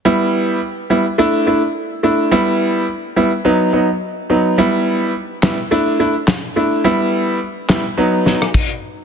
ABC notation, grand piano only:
X:1
M:4/4
L:1/8
Q:"Swing 16ths" 1/4=106
K:Em
V:1 name="Grand piano"
[G,B,E]2 z [G,B,E] [A,DE] [A,DE] z [A,DE] | [G,B,E]2 z [G,B,E] [F,B,^D] [F,B,D] z [F,B,D] | [G,B,E]2 z [G,B,E] [A,DE] [A,DE] z [A,DE] | [G,B,E]2 z [G,B,E] [F,B,^D] [F,B,D] z2 |]